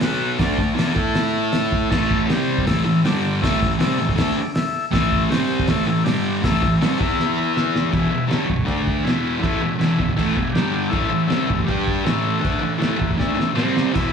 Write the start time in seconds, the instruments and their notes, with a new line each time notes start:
0.01 distorted electric guitar B2 F#3 B3, transistor combo organ F#4 B4 F#5, snare, open hi-hat
0.38 distorted electric guitar D3 A3 D4, transistor combo organ A4 D5 A5, kick, snare, open hi-hat
0.58 distorted electric guitar D3 A3, kick
0.74 distorted electric guitar E3 B3 E4, transistor combo organ D5, open hi-hat
0.79 transistor combo organ A4 A5, snare
0.94 distorted electric guitar A3 E4 A4, transistor combo organ A4 E5 A5, kick
1.15 snare, open hi-hat
1.32 transistor combo organ A4 E5 A5
1.51 transistor combo organ A4 E5 A5, snare, open hi-hat
1.71 transistor combo organ E5, kick
1.90 distorted electric guitar A2 E3 A3, transistor combo organ A4 E5 A5, kick, snare, crash
2.11 kick
2.27 distorted electric guitar C3 G3 C4, snare, open hi-hat
2.31 transistor combo organ G4 C5 G5
2.58 kick
2.66 distorted electric guitar A2 E3 A3, transistor combo organ E4 A4 E5, kick, snare, open hi-hat
2.85 distorted electric guitar A2 E3, transistor combo organ E4 A4 E5
3.04 distorted electric guitar G2 D3 G3, transistor combo organ D4 G4 D5, snare, open hi-hat
3.41 distorted electric guitar A2 E3 A3, transistor combo organ E4 A4 E5, kick, snare, open hi-hat
3.60 distorted electric guitar A2 E3, kick
3.79 distorted electric guitar C3 G3 C4, transistor combo organ E4 A4 E5, snare, open hi-hat
3.98 distorted electric guitar A2 E3
4.09 kick
4.16 distorted electric guitar D3 A3 D4, transistor combo organ E4, kick, snare, open hi-hat
4.21 transistor combo organ A4 E5
4.35 transistor combo organ E4 A4 D5
4.54 transistor combo organ E4 A4 E5, snare, open hi-hat
4.91 distorted electric guitar A2 E3 A3, transistor combo organ E4 A4 E5, kick, snare, open hi-hat
5.12 kick
5.30 distorted electric guitar C3 G3 C4, transistor combo organ G4 C5 G5, snare, open hi-hat
5.60 kick
5.67 distorted electric guitar A2 E3 A3, transistor combo organ E4 A4 E5, kick, snare, open hi-hat
5.87 distorted electric guitar A2 E3, transistor combo organ E4 A4 E5
6.04 distorted electric guitar G2, transistor combo organ D4 G4 D5, snare, open hi-hat
6.08 distorted electric guitar D3 G3
6.42 distorted electric guitar A2 E3 A3, transistor combo organ E4 A4 E5, kick, snare, open hi-hat
6.63 distorted electric guitar A2 E3, kick
6.80 distorted electric guitar C3 G3 C4, transistor combo organ E4 A4 C#5, snare, open hi-hat
6.98 distorted electric guitar E3 B3 E4, transistor combo organ B4 E5, kick
7.03 transistor combo organ E4
7.20 snare
7.37 transistor combo organ E4 B4 E5 B5
7.45 transistor combo organ G#5
7.55 transistor combo organ E4 B4 E5 F#5, snare
7.75 transistor combo organ E5, snare
7.91 distorted electric guitar E2 B2 E3, transistor combo organ G#4 B4, kick, crash
7.96 transistor combo organ E5
8.10 distorted electric guitar E2 B2
8.28 distorted electric guitar G2 D3 G3, snare, crash
8.33 transistor combo organ G#4 B4 C#5
8.47 distorted electric guitar E2 B2, kick
8.59 kick
8.65 distorted electric guitar D3 A3 D4, transistor combo organ D4 A4 D5, kick, crash
8.87 kick
9.01 distorted electric guitar E2, transistor combo organ E4 G#4 B4
9.05 distorted electric guitar B2 E3, snare, crash
9.40 distorted electric guitar A2 E3 A3, transistor combo organ E4 G#4 B4, kick
9.44 crash
9.62 distorted electric guitar E2 B2
9.79 distorted electric guitar E2 B2 E3, transistor combo organ E4 G#4 B4, snare, crash
9.99 distorted electric guitar E2 B2, kick
10.09 kick
10.16 distorted electric guitar A2 E3 A3, transistor combo organ E4 G#4 B4, kick, crash
10.36 distorted electric guitar E2 B2, transistor combo organ G#5, kick
10.51 transistor combo organ D4 G4 D5 G5
10.55 distorted electric guitar G2 D3 G3, snare, crash
10.88 distorted electric guitar A2 E3, transistor combo organ E4 A4 E5
10.92 distorted electric guitar A3, kick, crash
11.10 distorted electric guitar A2 E3
11.27 distorted electric guitar C3 G3 C4, transistor combo organ E4 A4 E5, snare, crash
11.48 distorted electric guitar A2 E3, kick
11.60 kick
11.64 distorted electric guitar G3, transistor combo organ D4 G4 D5, crash
11.68 distorted electric guitar D4 G4, kick
11.88 kick
12.04 distorted electric guitar A2 E3 A3, transistor combo organ E4 A4 E5, snare, crash
12.39 distorted electric guitar D3 A3 D4, transistor combo organ E4 A4 F#5
12.45 kick, crash
12.60 distorted electric guitar A2 E3
12.78 distorted electric guitar A2 E3 A3, transistor combo organ E4 A4 F#5, crash
12.82 snare
12.97 distorted electric guitar A2 E3
13.01 kick
13.11 kick
13.18 distorted electric guitar D3 A3 D4, transistor combo organ E4 A4, kick, snare
13.22 transistor combo organ E5
13.36 distorted electric guitar A2 E3, snare
13.55 distorted electric guitar C3 G3 C4, transistor combo organ C4 G4 C5, snare
13.77 snare
13.93 distorted electric guitar E2 B2 E3, transistor combo organ E4 G#4, kick, crash
13.97 transistor combo organ B4